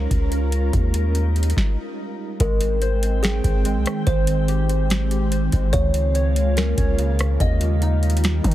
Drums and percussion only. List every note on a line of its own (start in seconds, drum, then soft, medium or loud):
0.11 kick loud
0.11 closed hi-hat medium
0.32 closed hi-hat medium
0.52 closed hi-hat medium
0.73 kick loud
0.73 closed hi-hat medium
0.94 closed hi-hat medium
1.15 closed hi-hat medium
1.36 closed hi-hat soft
1.43 closed hi-hat medium
1.50 closed hi-hat medium
1.57 kick loud
1.57 snare medium
2.40 kick loud
2.40 closed hi-hat medium
2.61 closed hi-hat medium
2.82 closed hi-hat medium
3.03 closed hi-hat medium
3.24 snare loud
3.24 closed hi-hat medium
3.44 kick loud
3.44 closed hi-hat medium
3.65 closed hi-hat medium
3.86 cross-stick loud
3.86 closed hi-hat medium
4.07 kick loud
4.07 closed hi-hat medium
4.27 closed hi-hat medium
4.48 closed hi-hat medium
4.69 closed hi-hat medium
4.90 snare loud
4.90 closed hi-hat medium
5.11 closed hi-hat medium
5.32 closed hi-hat medium
5.52 kick medium
5.52 closed hi-hat medium
5.73 kick loud
5.73 closed hi-hat medium
5.94 closed hi-hat medium
6.15 closed hi-hat medium
6.36 closed hi-hat medium
6.57 snare loud
6.57 closed hi-hat medium
6.78 kick loud
6.78 closed hi-hat medium
6.99 closed hi-hat medium
7.19 cross-stick loud
7.19 closed hi-hat medium
7.40 kick loud
7.40 closed hi-hat medium
7.61 closed hi-hat medium
7.82 closed hi-hat medium
8.03 closed hi-hat soft
8.10 closed hi-hat medium
8.17 closed hi-hat medium
8.24 snare loud
8.24 closed hi-hat medium
8.44 kick loud
8.44 closed hi-hat medium
8.51 closed hi-hat medium